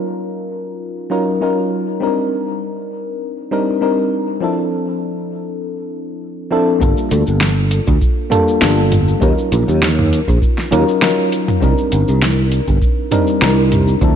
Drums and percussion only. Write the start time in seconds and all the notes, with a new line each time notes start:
6.81 kick, cabasa
6.98 cabasa
7.11 closed hi-hat, cabasa
7.27 cabasa
7.41 snare, cabasa
7.71 closed hi-hat, cabasa
7.87 kick, cabasa
8.01 kick, cabasa
8.32 closed hi-hat, mid tom, cabasa
8.48 cabasa
8.62 snare, cabasa
8.92 closed hi-hat, mid tom, cabasa
9.08 cabasa
9.22 kick, cabasa
9.38 cabasa
9.52 closed hi-hat, cabasa
9.69 cabasa
9.83 snare, cabasa
9.99 mid tom
10.13 closed hi-hat, cabasa
10.28 kick, cabasa
10.42 kick, cabasa
10.58 snare
10.72 closed hi-hat, cabasa
10.89 cabasa
11.02 snare, cabasa
11.32 closed hi-hat, cabasa
11.48 mid tom, cabasa
11.62 kick, cabasa
11.78 cabasa
11.92 closed hi-hat, cabasa
12.08 cabasa
12.22 snare, cabasa
12.52 closed hi-hat, cabasa
12.68 kick, cabasa
12.82 kick, cabasa
13.12 closed hi-hat, mid tom, cabasa
13.27 cabasa
13.42 snare, cabasa
13.72 closed hi-hat, mid tom, cabasa
13.88 cabasa
14.01 kick, cabasa